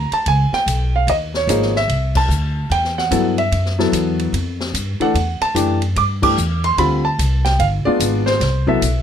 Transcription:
0.00 0.13 A#5 loud
0.11 0.27 A5 loud
0.11 muted upright bass stroke soft
0.11 ride soft
0.26 0.51 C#2 medium
0.26 0.52 G#5 loud
0.26 ride medium
0.52 0.95 G5 loud
0.52 muted upright bass stroke soft
0.52 snare soft
0.66 1.06 B1 medium
0.66 hi-hat pedal medium
0.66 ride medium
0.96 1.09 F5 medium
1.07 1.47 D#2 medium
1.07 1.15 D#5 medium
1.07 ride medium
1.34 1.73 C#5 medium
1.34 snare soft
1.47 1.87 G#1 medium
1.47 1.72 F3 medium
1.47 1.72 A#3 medium
1.47 1.72 D#4 medium
1.47 1.72 G#4 medium
1.47 hi-hat pedal medium
1.47 ride medium
1.62 snare soft
1.76 2.18 E5 loud
1.76 snare soft
1.88 2.28 C2 medium
1.88 ride medium
2.15 2.67 A5 loud
2.15 kick medium
2.15 crash medium
2.28 2.69 D2 medium
2.28 hi-hat pedal medium
2.70 3.10 E2 medium
2.70 2.98 G5 loud
2.70 ride medium
2.84 snare soft
2.98 3.35 F#5 medium
2.98 snare soft
3.11 3.51 G2 medium
3.11 3.35 F#3 medium
3.11 3.35 B3 medium
3.11 3.35 E4 medium
3.11 3.35 A4 medium
3.11 hi-hat pedal medium
3.11 ride medium
3.38 3.89 E5 medium
3.38 ride soft
3.52 3.91 F#2 medium
3.52 ride medium
3.66 snare soft
3.79 4.31 F#3 medium
3.79 4.31 B3 medium
3.79 4.31 E4 medium
3.79 4.31 A4 medium
3.79 snare soft
3.92 4.32 E2 medium
3.92 hi-hat pedal medium
3.92 ride medium
4.19 ride soft
4.33 4.73 F2 medium
4.33 ride medium
4.60 snare medium
4.73 4.98 G2 medium
4.73 hi-hat pedal medium
4.73 ride medium
5.00 5.13 E3 medium
5.00 5.14 A3 medium
5.00 5.14 D4 medium
5.00 5.14 A4 medium
5.00 5.39 F#5 loud
5.00 muted upright bass stroke soft
5.00 ride soft
5.14 5.39 E2 medium
5.14 ride medium
5.41 5.79 A5 loud
5.41 muted upright bass stroke soft
5.41 ride medium
5.55 5.95 F#2 medium
5.55 5.79 E3 medium
5.55 5.79 A3 medium
5.55 5.79 D4 medium
5.55 5.79 G4 medium
5.55 hi-hat pedal medium
5.55 ride medium
5.82 ride soft
5.96 6.36 G2 medium
5.96 6.03 D6 loud
5.96 ride medium
6.22 6.35 E3 medium
6.22 6.36 A3 medium
6.22 6.36 D4 medium
6.22 6.36 G4 medium
6.22 6.61 D6 loud
6.22 kick medium
6.22 crash medium
6.37 6.77 E2 medium
6.37 hi-hat pedal medium
6.64 6.79 C6 loud
6.64 ride medium
6.77 7.17 D2 medium
6.77 7.02 D3 medium
6.77 7.02 G3 medium
6.77 7.02 C4 medium
6.77 7.02 F4 medium
6.77 7.05 B5 loud
6.77 ride medium
7.05 7.42 A5 loud
7.18 7.58 C2 medium
7.18 hi-hat pedal medium
7.18 ride medium
7.45 7.60 G5 medium
7.45 snare medium
7.45 ride medium
7.59 7.84 G1 medium
7.59 7.66 F5 medium
7.59 ride medium
7.85 8.38 G#3 medium
7.85 8.38 B3 medium
7.85 8.38 D4 medium
7.85 8.38 F4 medium
7.85 8.27 D5 loud
7.85 muted upright bass stroke soft
8.00 8.39 G#1 medium
8.00 hi-hat pedal medium
8.00 ride medium
8.26 8.68 C5 loud
8.26 snare medium
8.40 8.80 C2 medium
8.40 snare soft
8.40 ride medium
8.67 8.80 F#3 medium
8.67 8.80 B3 medium
8.67 8.80 E4 medium
8.67 8.80 A4 medium
8.67 9.02 E5 medium
8.67 kick medium
8.82 9.02 B1 medium
8.82 hi-hat pedal medium
8.82 ride medium

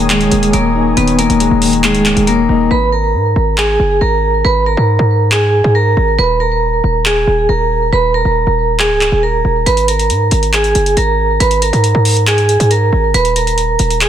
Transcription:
0.00 0.30 D#1 loud
0.00 0.10 D#3 medium
0.00 0.75 G#3 medium
0.00 0.30 A#3 medium
0.00 2.67 C#5 medium
0.00 2.67 G#5 medium
0.00 2.67 D#6 medium
0.10 0.95 D#3 medium
0.10 0.51 G#3 medium
0.10 0.51 G#4 medium
0.10 clap loud
0.10 closed hi-hat medium
0.21 closed hi-hat medium
0.32 0.53 D#1 loud
0.32 0.52 A#3 medium
0.32 closed hi-hat medium
0.43 closed hi-hat medium
0.53 0.95 D#1 loud
0.53 0.94 A#3 medium
0.53 1.17 A#3 medium
0.53 0.95 A#4 medium
0.53 closed hi-hat medium
0.75 1.84 D#4 medium
0.97 1.28 D#1 loud
0.97 1.61 D#3 medium
0.97 1.14 B3 loud
0.97 1.14 B4 medium
0.97 closed hi-hat medium
1.08 closed hi-hat medium
1.19 1.80 A#3 medium
1.19 2.04 A#3 medium
1.19 1.80 A#4 medium
1.19 closed hi-hat medium
1.30 1.50 D#1 loud
1.30 closed hi-hat medium
1.40 2.49 G#3 medium
1.40 closed hi-hat medium
1.51 1.96 D#1 loud
1.62 1.82 D#3 medium
1.62 open hi-hat medium
1.73 closed hi-hat soft
1.84 2.71 D#3 medium
1.84 2.25 G#3 medium
1.84 2.25 G#4 medium
1.84 clap loud
1.84 closed hi-hat medium
1.95 2.15 C#1 loud
1.95 closed hi-hat medium
2.05 2.26 A#3 medium
2.05 clap loud
2.05 closed hi-hat medium
2.17 2.48 D#1 loud
2.17 closed hi-hat medium
2.27 2.68 A#3 medium
2.27 2.71 A#3 medium
2.27 2.69 A#4 medium
2.27 closed hi-hat medium
2.49 2.70 D#1 loud
2.49 2.71 D#4 loud
2.71 3.16 G#1 loud
2.71 2.88 B4 loud
2.71 2.88 B5 medium
2.92 3.54 A#4 medium
2.92 3.54 A#5 medium
3.14 3.35 G#2 loud
3.36 3.78 G#1 loud
3.58 3.99 G#4 medium
3.58 3.99 G#5 medium
3.58 clap loud
3.80 4.00 F#1 loud
4.01 4.43 G#1 loud
4.01 4.42 A#4 medium
4.01 4.42 A#5 medium
4.45 4.76 G#1 loud
4.45 4.62 B4 loud
4.45 4.62 B5 medium
4.66 5.28 A#4 medium
4.66 5.28 A#5 medium
4.77 4.98 G#2 loud
4.99 5.62 G#2 loud
5.32 5.73 G#4 medium
5.32 5.73 G#5 medium
5.32 clap loud
5.64 5.96 G#2 loud
5.75 6.16 A#4 medium
5.75 6.16 A#5 medium
5.97 6.18 G#1 loud
6.18 6.81 D#1 loud
6.18 6.36 B4 loud
6.18 6.36 B5 medium
6.40 7.02 A#4 medium
6.40 7.02 A#5 medium
6.84 7.26 D#1 loud
7.06 7.46 G#4 medium
7.06 7.47 G#5 medium
7.06 clap loud
7.27 7.48 D#1 loud
7.49 7.91 D#1 loud
7.49 7.90 A#4 medium
7.49 7.90 A#5 medium
7.93 8.24 D#1 loud
7.93 8.10 B4 loud
7.93 8.10 B5 medium
8.14 8.76 A#4 medium
8.14 8.76 A#5 medium
8.25 8.46 D#1 loud
8.47 8.92 D#1 loud
8.79 9.20 G#4 medium
8.79 9.21 G#5 medium
8.79 clap loud
8.90 9.11 C#1 loud
9.01 clap medium
9.12 9.43 D#1 loud
9.23 9.64 A#4 medium
9.23 9.64 A#5 medium
9.45 9.66 D#1 loud
9.66 10.12 G#1 loud
9.66 9.84 B4 loud
9.66 9.84 B5 medium
9.66 closed hi-hat medium
9.77 closed hi-hat medium
9.88 10.49 A#4 medium
9.88 10.50 A#5 medium
9.88 closed hi-hat medium
9.99 closed hi-hat medium
10.10 10.31 G#2 medium
10.10 closed hi-hat medium
10.31 10.73 G#1 loud
10.31 closed hi-hat medium
10.43 closed hi-hat soft
10.53 10.94 G#4 medium
10.53 10.95 G#5 medium
10.53 clap loud
10.53 closed hi-hat medium
10.64 closed hi-hat medium
10.75 10.96 F#1 loud
10.75 closed hi-hat medium
10.86 closed hi-hat medium
10.97 11.39 G#1 loud
10.97 11.38 A#4 medium
10.97 11.38 A#5 medium
10.97 closed hi-hat medium
11.40 11.72 G#1 loud
11.40 11.58 B4 loud
11.40 11.58 B5 medium
11.40 closed hi-hat medium
11.51 closed hi-hat medium
11.62 12.23 A#4 medium
11.62 12.24 A#5 medium
11.62 closed hi-hat medium
11.73 11.94 G#2 loud
11.73 closed hi-hat medium
11.84 closed hi-hat medium
11.95 12.57 G#2 loud
12.05 open hi-hat medium
12.17 closed hi-hat soft
12.27 12.68 G#4 medium
12.27 12.69 G#5 medium
12.27 clap loud
12.27 closed hi-hat medium
12.38 closed hi-hat medium
12.49 closed hi-hat medium
12.60 12.91 G#2 loud
12.60 closed hi-hat medium
12.71 13.12 A#4 medium
12.71 13.12 A#5 medium
12.71 closed hi-hat medium
12.93 13.13 G#1 loud
13.14 13.77 D#1 loud
13.14 13.31 B4 loud
13.14 13.32 B5 medium
13.14 closed hi-hat medium
13.25 closed hi-hat medium
13.36 13.97 A#4 medium
13.36 13.98 A#5 medium
13.36 closed hi-hat medium
13.47 closed hi-hat soft
13.58 closed hi-hat medium
13.79 14.09 D#1 loud
13.79 closed hi-hat medium
13.91 closed hi-hat soft
14.01 14.09 G#4 medium
14.01 14.09 G#5 medium
14.01 clap loud
14.01 closed hi-hat medium

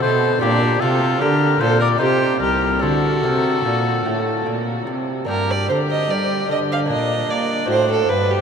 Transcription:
0.00 0.42 B2 medium
0.00 0.39 B2 medium
0.00 0.36 A3 medium
0.00 0.37 C4 soft
0.00 0.37 F#4 medium
0.00 0.41 A4 medium
0.00 0.41 C5 loud
0.39 0.81 A#2 medium
0.39 0.78 A#2 medium
0.39 1.96 D4 medium
0.39 0.80 D4 medium
0.39 1.97 G4 medium
0.39 0.82 G4 loud
0.80 1.21 C3 medium
0.80 1.18 C3 medium
0.80 1.22 F4 medium
0.80 1.20 A4 loud
1.20 1.61 D3 medium
1.20 1.57 D3 medium
1.20 1.60 G4 medium
1.20 1.62 A#4 loud
1.61 1.97 A#2 medium
1.61 2.00 A#2 medium
1.61 1.80 A4 medium
1.61 1.81 C5 loud
1.80 1.88 A#4 medium
1.80 1.99 D5 loud
1.98 2.38 C3 medium
1.98 2.41 C3 medium
1.98 2.79 D#4 medium
1.98 2.80 G4 medium
1.98 2.41 G4 medium
1.98 2.39 C5 loud
2.40 2.84 C2 medium
2.40 2.82 G4 medium
2.40 2.83 A#4 loud
2.79 3.20 D3 medium
2.79 3.24 D3 medium
2.79 5.23 D4 medium
2.79 4.87 A4 loud
2.84 4.84 F#4 medium
3.24 3.61 C3 medium
3.24 3.64 C3 medium
3.65 4.05 A#2 medium
3.65 4.02 A#2 soft
4.06 4.45 A2 medium
4.06 4.42 A2 medium
4.46 4.83 A#2 soft
4.46 4.87 A#2 medium
4.87 5.24 C3 soft
4.87 5.28 C3 medium
5.25 5.65 G2 soft
5.25 6.83 A#3 soft
5.25 6.84 D4 soft
5.25 6.85 G4 medium
5.29 5.71 G2 medium
5.29 5.52 A#4 medium
5.50 5.69 D5 medium
5.69 6.09 D3 medium
5.69 6.06 D3 soft
5.69 5.77 C5 medium
5.91 6.12 D#5 medium
6.09 6.45 G3 soft
6.09 6.49 G3 medium
6.09 6.50 D5 medium
6.49 6.85 D3 soft
6.49 6.91 D3 medium
6.49 6.58 D#5 medium
6.72 6.79 F5 medium
6.86 7.25 A#2 soft
6.86 7.28 A#3 soft
6.86 7.66 D4 soft
6.86 8.41 D4 medium
6.90 7.29 A#2 medium
6.90 7.32 D#5 medium
7.29 7.65 A#3 soft
7.29 7.68 A#3 medium
7.29 7.69 D5 medium
7.66 8.05 A2 soft
7.66 8.08 A2 medium
7.66 8.41 C4 soft
7.66 8.41 F#4 soft
7.66 7.89 C5 medium
7.91 8.10 A4 medium
8.09 8.41 G2 medium
8.09 8.41 G2 soft
8.09 8.32 B4 medium
8.31 8.41 G4 medium

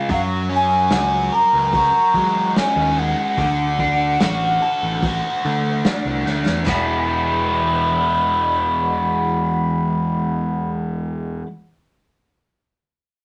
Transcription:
0.09 0.87 F#2 loud
0.09 2.15 F#3 medium
0.09 kick medium
0.09 open hi-hat soft
0.13 0.22 F5 medium
0.49 2.55 C#4 medium
0.56 1.36 G#5 medium
0.90 1.29 C#2 medium
0.90 1.73 F#4 medium
0.90 snare loud
0.90 open hi-hat soft
1.32 3.38 A#4 medium
1.32 2.57 A#5 medium
1.53 1.90 C#2 medium
1.73 3.38 F#4 medium
1.73 kick loud
1.73 open hi-hat soft
2.14 2.52 F#3 medium
2.14 2.97 G#3 medium
2.14 kick medium
2.56 3.38 C#4 medium
2.56 3.00 G#5 medium
2.56 snare medium
2.56 open hi-hat soft
2.76 3.13 D#2 medium
2.99 3.39 G#3 medium
2.99 6.26 F#5 medium
3.38 4.16 D2 loud
3.38 5.43 D3 medium
3.38 kick medium
3.38 open hi-hat soft
3.79 5.85 D4 medium
3.79 kick medium
4.20 4.58 A1 loud
4.20 5.03 F#4 medium
4.20 snare loud
4.20 open hi-hat soft
4.62 6.67 A4 medium
4.83 5.19 A1 medium
5.03 6.68 F#4 medium
5.03 kick loud
5.03 open hi-hat medium
5.45 5.81 D3 medium
5.45 6.25 A3 medium
5.85 6.68 D4 medium
5.85 snare medium
5.85 open hi-hat soft
6.05 6.23 C2 medium
6.26 6.44 D2 medium
6.26 6.67 A3 medium
6.26 snare soft
6.46 6.65 E2 medium
6.46 snare medium
6.66 11.42 E1 loud
6.66 11.45 E3 medium
6.66 11.46 G#3 medium
6.66 11.47 B3 loud
6.66 10.71 B5 medium
6.66 kick medium
6.66 snare medium
6.66 china medium
6.70 11.47 E4 loud

